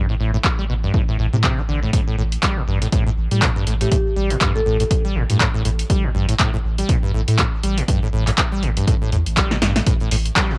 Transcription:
0.09 0.15 A2 medium
0.20 0.38 A1 medium
0.20 0.31 A2 medium
0.34 0.37 A2 loud
0.44 kick loud
0.44 clap loud
0.59 0.65 G3 medium
0.69 0.88 A1 medium
0.69 0.74 B2 medium
0.83 0.92 G2 medium
0.94 1.02 A2 medium
0.94 kick loud
1.08 1.17 A2 medium
1.19 1.29 A1 medium
1.19 1.27 A2 medium
1.33 1.50 A2 loud
1.33 1.36 C3 medium
1.44 1.59 C3 medium
1.44 kick loud
1.44 clap loud
1.58 1.61 E3 loud
1.69 1.87 A1 medium
1.69 1.80 D3 medium
1.83 1.91 A2 medium
1.93 2.01 A2 medium
1.93 kick loud
1.93 closed hi-hat medium
2.07 2.16 A2 medium
2.18 2.37 A1 medium
2.18 2.23 A2 loud
2.32 closed hi-hat soft
2.43 2.58 G3 medium
2.43 kick medium
2.43 clap loud
2.43 closed hi-hat medium
2.57 2.63 A2 medium
2.68 2.86 A1 medium
2.68 2.79 G2 medium
2.82 2.88 A2 medium
2.82 closed hi-hat soft
2.92 3.04 A2 medium
2.92 kick loud
2.92 closed hi-hat medium
3.06 3.10 A2 medium
3.17 3.27 A1 medium
3.31 3.48 A2 loud
3.31 3.43 G3 medium
3.31 closed hi-hat soft
3.42 3.50 A2 medium
3.42 kick loud
3.42 clap loud
3.42 closed hi-hat medium
3.56 3.65 G2 medium
3.67 3.85 A1 medium
3.67 3.75 A2 medium
3.67 closed hi-hat medium
3.81 3.90 A2 medium
3.81 3.88 G4 medium
3.81 closed hi-hat soft
3.92 3.96 A2 loud
3.92 4.01 G4 medium
3.92 kick loud
3.92 closed hi-hat medium
4.16 4.35 A1 medium
4.16 4.32 G3 medium
4.30 4.36 A2 medium
4.30 closed hi-hat soft
4.41 4.53 G2 medium
4.41 kick medium
4.41 clap loud
4.41 closed hi-hat medium
4.55 4.61 A2 medium
4.55 5.05 A4 medium
4.66 4.85 A1 medium
4.66 4.78 A2 medium
4.80 4.84 A2 loud
4.80 closed hi-hat soft
4.91 kick loud
4.91 closed hi-hat medium
5.05 5.17 G3 medium
5.16 5.26 A1 medium
5.16 5.23 A2 medium
5.30 5.39 G2 medium
5.30 5.46 A2 medium
5.30 closed hi-hat soft
5.40 5.48 A2 medium
5.40 kick medium
5.40 clap loud
5.40 closed hi-hat medium
5.54 5.63 A2 medium
5.65 5.84 A1 medium
5.65 5.70 A2 medium
5.65 closed hi-hat medium
5.79 closed hi-hat soft
5.90 6.06 G3 medium
5.90 kick loud
5.90 closed hi-hat medium
6.04 6.10 A2 medium
6.15 6.33 A1 medium
6.15 6.26 G2 medium
6.29 6.35 A2 medium
6.29 closed hi-hat soft
6.39 6.51 A2 medium
6.39 kick loud
6.39 clap loud
6.39 closed hi-hat medium
6.54 6.57 A2 medium
6.64 6.83 A1 medium
6.78 6.91 G3 medium
6.78 closed hi-hat medium
6.89 6.97 A2 medium
6.89 kick loud
6.89 closed hi-hat medium
7.03 7.12 G2 medium
7.14 7.24 A1 medium
7.14 7.22 A2 medium
7.28 7.45 A2 loud
7.28 7.37 A2 medium
7.28 closed hi-hat soft
7.39 7.43 A2 medium
7.39 kick medium
7.39 clap loud
7.39 closed hi-hat medium
7.63 7.82 A1 medium
7.63 7.79 G3 medium
7.63 closed hi-hat medium
7.78 7.83 A2 medium
7.78 closed hi-hat soft
7.88 8.00 G2 medium
7.88 kick loud
7.88 closed hi-hat medium
8.02 8.08 A2 medium
8.13 8.32 A1 loud
8.13 8.25 A2 medium
8.27 8.31 A2 loud
8.27 clap soft
8.27 closed hi-hat medium
8.38 kick medium
8.38 clap loud
8.38 closed hi-hat medium
8.52 8.64 G3 medium
8.63 8.81 A1 medium
8.63 8.70 A2 medium
8.63 closed hi-hat soft
8.77 8.86 G2 medium
8.77 closed hi-hat medium
8.87 8.95 A2 medium
8.87 kick loud
8.87 closed hi-hat medium
9.02 9.10 A2 medium
9.12 9.22 E2 medium
9.12 9.17 A2 loud
9.12 closed hi-hat soft
9.26 9.43 A1 loud
9.26 closed hi-hat soft
9.37 9.53 G3 medium
9.37 kick medium
9.37 clap loud
9.37 closed hi-hat medium
9.51 9.57 A2 medium
9.51 snare soft
9.62 9.80 A1 medium
9.62 9.73 G2 medium
9.62 snare medium
9.62 closed hi-hat medium
9.76 9.82 A2 medium
9.76 snare medium
9.76 closed hi-hat medium
9.87 9.94 A2 medium
9.87 kick loud
9.87 closed hi-hat medium
10.00 10.10 A2 medium
10.00 closed hi-hat soft
10.11 10.30 A1 loud
10.11 10.16 A2 loud
10.11 closed hi-hat medium
10.11 open hi-hat loud
10.26 closed hi-hat medium
10.36 10.52 G3 medium
10.36 kick loud
10.36 snare loud
10.36 clap loud
10.36 closed hi-hat medium
10.50 10.56 A2 medium
10.50 snare soft

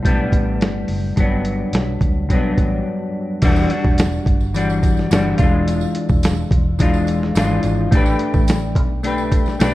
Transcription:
0.03 0.27 B1 medium
0.03 1.16 A2 medium
0.03 1.18 G3 medium
0.03 kick medium
0.03 closed hi-hat medium
0.07 1.20 B3 medium
0.07 1.21 D4 medium
0.32 0.61 A1 medium
0.32 kick medium
0.32 closed hi-hat medium
0.61 0.83 G1 medium
0.61 snare loud
0.61 closed hi-hat medium
0.88 1.11 F#1 medium
0.88 open hi-hat soft
1.16 1.62 G1 medium
1.16 2.28 G2 medium
1.16 2.31 F#3 medium
1.16 2.33 B3 medium
1.16 kick medium
1.16 closed hi-hat medium
1.22 2.34 D4 medium
1.45 closed hi-hat medium
1.73 1.96 B1 medium
1.73 snare loud
1.73 closed hi-hat loud
2.01 2.30 D2 medium
2.01 kick medium
2.01 closed hi-hat medium
2.29 2.52 B1 medium
2.29 3.42 G2 medium
2.29 3.43 F#3 medium
2.29 kick medium
2.29 closed hi-hat medium
2.33 3.44 B3 medium
2.33 3.44 D4 medium
2.58 2.80 A1 medium
2.58 kick medium
2.58 closed hi-hat medium
3.42 3.65 E1 loud
3.42 3.70 E3 medium
3.42 3.71 G3 medium
3.42 3.71 D4 loud
3.42 3.70 F#4 medium
3.42 kick loud
3.42 closed hi-hat medium
3.42 crash medium
3.42 tambourine soft
3.56 tambourine soft
3.70 4.56 D4 medium
3.70 4.55 F#4 medium
3.70 closed hi-hat medium
3.75 4.54 G3 soft
3.85 4.18 E1 loud
3.85 kick medium
3.98 snare loud
3.98 closed hi-hat loud
3.98 tambourine medium
4.12 tambourine soft
4.26 5.07 G1 medium
4.26 kick medium
4.26 closed hi-hat medium
4.40 tambourine soft
4.54 5.10 E3 medium
4.54 5.11 G3 medium
4.54 5.13 D4 medium
4.54 5.13 F#4 medium
4.54 closed hi-hat medium
4.54 tambourine medium
4.70 tambourine soft
4.83 kick medium
4.83 closed hi-hat medium
4.83 tambourine soft
4.97 snare soft
4.97 tambourine soft
5.11 5.34 G1 medium
5.11 5.39 E3 medium
5.11 5.40 G3 medium
5.11 5.39 D4 medium
5.11 snare loud
5.11 closed hi-hat medium
5.11 tambourine medium
5.15 5.38 F#4 medium
5.38 5.84 E1 loud
5.38 6.81 D4 medium
5.38 6.79 F4 medium
5.38 kick loud
5.38 closed hi-hat medium
5.38 tambourine soft
5.42 6.78 E3 medium
5.42 6.79 G#3 medium
5.68 closed hi-hat medium
5.68 tambourine soft
5.81 tambourine soft
5.95 closed hi-hat medium
6.09 6.43 E1 loud
6.09 kick medium
6.09 tambourine soft
6.23 snare loud
6.23 closed hi-hat loud
6.23 tambourine medium
6.36 tambourine soft
6.51 7.31 E1 medium
6.51 kick loud
6.51 closed hi-hat medium
6.79 7.35 E3 medium
6.79 7.35 G#3 medium
6.79 7.37 D4 medium
6.79 7.37 F4 medium
6.79 kick medium
6.79 closed hi-hat loud
6.79 tambourine soft
6.93 tambourine soft
7.07 closed hi-hat medium
7.07 tambourine soft
7.23 snare soft
7.35 7.58 G#1 medium
7.35 7.96 E3 medium
7.35 7.91 G#3 medium
7.35 7.93 D4 medium
7.35 7.93 F4 medium
7.35 snare loud
7.35 closed hi-hat medium
7.35 tambourine medium
7.63 7.86 G#1 medium
7.63 closed hi-hat medium
7.63 tambourine soft
7.91 8.14 A1 loud
7.91 9.02 A3 medium
7.91 9.04 D4 medium
7.91 kick loud
7.91 closed hi-hat medium
7.91 tambourine soft
7.95 9.05 G4 medium
7.95 9.06 B4 medium
8.06 tambourine soft
8.19 closed hi-hat medium
8.34 8.75 A1 loud
8.34 kick medium
8.34 tambourine soft
8.48 snare loud
8.48 closed hi-hat loud
8.48 tambourine medium
8.75 9.56 B1 medium
8.75 kick medium
8.75 closed hi-hat medium
9.03 9.58 A3 medium
9.03 9.61 D4 medium
9.03 9.62 G4 medium
9.03 9.62 B4 medium
9.03 closed hi-hat medium
9.03 tambourine soft
9.18 tambourine soft
9.32 kick medium
9.32 closed hi-hat medium
9.32 tambourine soft
9.46 snare soft
9.46 tambourine soft
9.59 9.74 B1 medium
9.59 9.74 A3 medium
9.59 9.74 D4 medium
9.59 9.74 G4 medium
9.59 9.74 B4 medium
9.59 snare loud
9.59 closed hi-hat medium
9.59 tambourine medium

